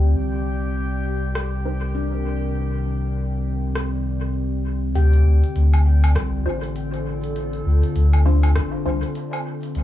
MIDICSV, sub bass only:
0, 0, Header, 1, 2, 480
1, 0, Start_track
1, 0, Tempo, 600000
1, 123, Time_signature, 4, 2, 24, 8
1, 7866, End_track
2, 0, Start_track
2, 0, Title_t, "Sub bass"
2, 0, Program_c, 0, 38
2, 0, Note_on_c, 0, 38, 80
2, 105, Note_off_c, 0, 38, 0
2, 123, Note_on_c, 0, 36, 79
2, 3943, Note_off_c, 0, 36, 0
2, 3965, Note_on_c, 0, 38, 100
2, 4181, Note_off_c, 0, 38, 0
2, 4203, Note_on_c, 0, 38, 82
2, 4329, Note_off_c, 0, 38, 0
2, 4445, Note_on_c, 0, 38, 88
2, 4905, Note_off_c, 0, 38, 0
2, 4924, Note_on_c, 0, 36, 95
2, 5140, Note_off_c, 0, 36, 0
2, 5161, Note_on_c, 0, 33, 102
2, 6104, Note_off_c, 0, 33, 0
2, 6123, Note_on_c, 0, 38, 82
2, 6248, Note_off_c, 0, 38, 0
2, 6362, Note_on_c, 0, 38, 97
2, 6824, Note_off_c, 0, 38, 0
2, 7081, Note_on_c, 0, 36, 80
2, 7207, Note_off_c, 0, 36, 0
2, 7805, Note_on_c, 0, 36, 103
2, 7866, Note_off_c, 0, 36, 0
2, 7866, End_track
0, 0, End_of_file